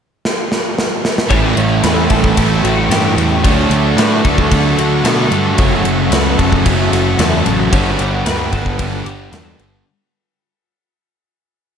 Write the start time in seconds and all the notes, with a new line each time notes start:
0.25 snare
0.52 snare
0.79 snare
1.05 snare
1.18 snare
1.29 A1 A2 E3 G3 A3 C#4 E4 A4 C#5 E5 G5 C#6, kick, ride
1.56 A1 E3 A3, ride
1.83 E2 A2 E3 A3 B4, snare, ride
2.10 A1 E3 A3 A4, kick, ride
2.24 kick
2.36 A1 A2 E3 G3 A3 C#4, kick, ride
2.40 E4
2.63 A1 E3 A3 F#4, ride
2.89 G2 A2 E3 A3 G4, snare, ride
3.16 E2 E3 A3, ride
3.43 D2 D3 F#3 A3 D4 A4 C#5 F#5, kick, ride
3.70 D2 A3 D4, ride
3.96 A2 D3 A3 D4 B4, snare, ride
4.23 D2 A3 D4 A4, kick, ride
4.38 kick
4.50 D2 D3 F#3 A3 D4, kick, ride
4.76 D2 A3 D4 F#4, ride
5.03 B2 D3 A3 D4 A4, snare, ride
5.30 G2 A3 D4, ride
5.57 F#1 F#2 C#3 F#3 A3 C#4 C#5 E5, kick, ride
5.83 F#1 C#3 F#3, ride
6.11 C#2 F#2 C#3 F#3 B4, snare, ride
6.38 F#1 C#3 F#3 A4, kick, ride
6.52 kick
6.64 F#1 F#2 C#3 F#3 A3 C#4, kick, ride
6.91 F#1 C#3 F#3 F#4, snare, ride
7.18 E2 F#2 C#3 F#3 A4, snare, ride
7.45 A1 C#3 F#3, ride
7.72 G1 G2 D3 G3 B3 D4 B4 C#5 F#5 G5, kick, ride
7.98 G1 D3 G3, ride
8.25 D2 G2 D3 G3 B4, snare, ride
8.52 G1 D3 G3 A4, kick, ride
8.66 kick
8.78 G1 G2 D3 G3 B3 D4, kick, ride
9.04 G1 D3 G3 G4, ride
9.31 E2 G2 D3 G3 A4, snare, ride
9.57 G1 D3 G3, ride